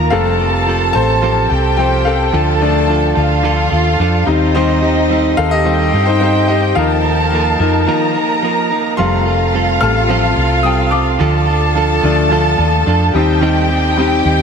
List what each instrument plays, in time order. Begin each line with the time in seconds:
Already playing: upright piano F3 A#3 D#4, clean electric guitar A#3 F4 A#4
0.10 fingered electric bass F1, clean electric guitar F3 C4 G4 A4, upright piano G3 A3 F4 A4 F5, violin section A4 A5
0.39 clean electric guitar C4 G4 A4
0.67 clean electric guitar F3 C4 G4 A4
0.93 fingered electric bass A1, clean electric guitar G4 A4, upright piano C5 A5
0.97 clean electric guitar C4
1.22 clean electric guitar F3 C4 G4 A4
1.50 fingered electric bass C2, clean electric guitar C4 G4 A4, violin section G4 G5
1.77 clean electric guitar F3 C4 G4 A4, upright piano C5 G5
2.05 clean electric guitar C4 G4 A4, upright piano A4 F5
2.32 fingered electric bass D2, clean electric guitar D3 F3 D4 F4 A4, violin section A4 A5
2.60 upright piano F3 A3 D4, clean electric guitar D4 F4 A4
2.88 clean electric guitar F3 D4 F4 A4
3.15 fingered electric bass D2, clean electric guitar D4 F4 A4, violin section F4 F5
3.43 clean electric guitar D3 F3 D4 F4 A4
3.71 fingered electric bass D#2, clean electric guitar D4 F4 A4
3.99 fingered electric bass F2, clean electric guitar F3 D4 F4 A4
4.26 fingered electric bass D#2, upright piano G3 C4 D#4, clean electric guitar C4 D#4 G4, violin section D#4 D#5
4.55 clean electric guitar D#3 G3 C4 D#4 G4, upright piano D#4 C5
4.82 clean electric guitar C4 D#4 G4
5.10 clean electric guitar G3 C4 D#4 G4
5.37 fingered electric bass D#2, clean electric guitar C4 D#4 G4, upright piano A4 F5
5.51 upright piano G4 D#5
5.65 clean electric guitar D#3 G3 C4 D#4 G4, violin section G4 G5
5.93 fingered electric bass G2, clean electric guitar C4 D#4 G4
6.06 upright piano D#4 C5
6.20 clean electric guitar G3 C4 D#4 G4, upright piano D#4 C5
6.48 clean electric guitar C4 D#4 G4, upright piano G4 D#5
6.75 fingered electric bass D#2, clean electric guitar D#3 F3 A#3 D#4 A#4, upright piano F3 A#3 D#4 A#4 F5, violin section A4 A5
7.04 clean electric guitar A#3 D#4 A#4
7.32 clean electric guitar F3 A#3 D#4 A#4
7.59 fingered electric bass F2, upright piano F3 A#3 D#4, clean electric guitar A#3 D#4 A#4
7.87 clean electric guitar D#3 F3 A#3 D#4 A#4, violin section A#4 A#5
8.14 clean electric guitar A#3 D#4 A#4
8.42 clean electric guitar F3 A#3 D#4 A#4
8.70 clean electric guitar A#3 D#4 A#4
8.97 fingered electric bass F1, clean electric guitar F3 G3 C4 F4 A4, upright piano G3 A3 F4 F5 C6, violin section F4 F5
9.26 clean electric guitar C4 F4 A4
9.53 clean electric guitar G3 C4 F4 A4
9.81 fingered electric bass A1, upright piano G3 A3 F4 A5 F6, clean electric guitar C4 F4 A4
10.09 clean electric guitar F3 G3 C4 F4 A4
10.36 fingered electric bass C2, clean electric guitar C4 F4 A4
10.63 clean electric guitar G3 C4 F4 A4, upright piano G5 D#6
10.91 clean electric guitar C4 F4 A4, upright piano F5 D6
11.19 fingered electric bass D2, clean electric guitar D3 F3 D4 F4 A4, violin section A4 A5
11.47 clean electric guitar D4 F4 A4
11.75 clean electric guitar F3 D4 F4 A4
12.02 fingered electric bass D2, upright piano F3 A3 D4, clean electric guitar D4 F4 A4
12.30 clean electric guitar D3 F3 D4 F4 A4
12.59 fingered electric bass D#2, clean electric guitar D4 F4 A4
12.86 fingered electric bass F2, clean electric guitar F3 D4 F4 A4
13.14 fingered electric bass D#2, upright piano G3 C4 D#4, clean electric guitar C4 D#4 G4, violin section G4 G5
13.41 clean electric guitar D#3 G3 C4 D#4 G4
13.69 clean electric guitar C4 D#4 G4
13.97 upright piano G3 C4 D#4, clean electric guitar G3 C4 D#4 G4
14.25 fingered electric bass D#2, clean electric guitar C4 D#4 G4